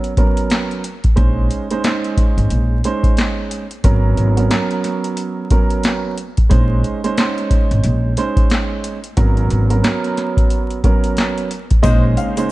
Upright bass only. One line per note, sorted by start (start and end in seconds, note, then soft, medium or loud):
1.17 1.47 A#1 loud
2.37 2.49 G#1 medium
2.51 2.80 A#1 medium
3.84 4.13 G#1 loud
4.17 4.47 G#1 loud
6.51 6.80 A#1 loud
7.71 7.83 G#1 medium
7.84 8.13 A#1 medium
9.17 9.47 G#1 loud
9.51 9.80 G#1 loud
11.84 12.13 A#1 loud